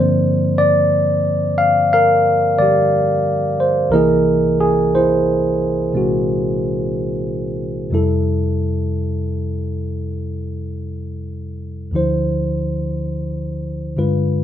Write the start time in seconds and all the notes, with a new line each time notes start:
Already playing: G2 D3 F3 A#3 C4 C5 D5
0.58 D5
1.58 F5
1.93 A#4 F5
2.58 D3 G3 G4 D5
3.60 C5
3.89 C2 C3 E3 A#3 A#4
3.93 E4 G#4 D#5
4.61 G#4
4.95 E4 C5
5.93 A#2 C3 G#3 C4
5.97 F#4
7.90 F2 C3 G3 E4
7.95 A4
11.91 D2 D3 F3
11.95 E4 C5
13.97 G2 D3 G#3 F4 B4